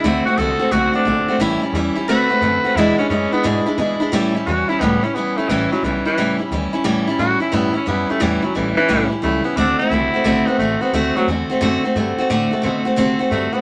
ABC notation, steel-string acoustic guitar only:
X:1
M:4/4
L:1/8
Q:"Swing" 1/4=176
K:Amix
V:1 name="Steel-string acoustic guitar"
[D,A,=CF] [A,CF] [D,A,CF] [A,CF] [D,A,CF] [A,CF] [D,A,CF] [A,CF] | [A,,E,G,CE] [G,CE] [E,G,CE] [G,CE] [D,A,=CF] [A,CF] [D,A,CF] [A,CF] | [E,,B,,E,^G,DE] [E,G,DE] [E,G,DE] [E,G,DE] [E,,B,,E,G,DE] [E,G,DE] [E,G,DE] [E,G,DE] | [A,,E,G,CE] [G,CE] [E,G,CE] [G,CE] [A,,E,G,CE] [G,CE] [E,G,CE] [G,CE] |
[A,,E,G,CE] [G,CE] [E,G,CE] [G,CE] [A,,E,G,CE] [G,CE] [E,G,CE] [G,CE] | [A,,E,G,CE] [G,CE] [E,G,CE] [G,CE] [A,,E,G,CE] [G,CE] [E,G,CE] [G,CE] | [A,,E,G,CE] [G,CE] [E,G,CE] [G,CE] [A,,E,G,CE] [G,CE] [E,G,CE] [G,CE] | [D,A,=CF] [A,CF] [D,A,CF] [A,CF] [D,A,CF] [A,CF] [D,A,CF] [A,CF] |
[D,A,=CF] [A,CF] [D,A,CF] [A,CF] [D,A,CF] [A,CF] [D,A,CF] [A,CF] | [D,A,=CF] [A,CF] [D,A,CF] [A,CF] [D,A,CF] [A,CF] [D,A,CF] [A,CF] |]